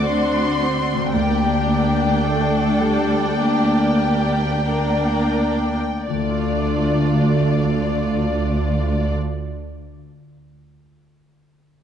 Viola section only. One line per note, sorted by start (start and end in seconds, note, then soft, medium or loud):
0.09 0.61 C4 soft
0.09 0.59 D4 soft
0.62 1.13 C4 soft
1.13 1.65 A#3 soft
1.13 4.65 D4 soft
1.66 2.20 A#3 soft
2.22 2.79 A3 soft
2.79 3.38 G3 medium
3.39 4.64 A#3 soft
4.66 5.79 A#3 soft
4.66 5.79 D4 soft
6.08 9.13 A3 soft
6.08 9.14 D4 soft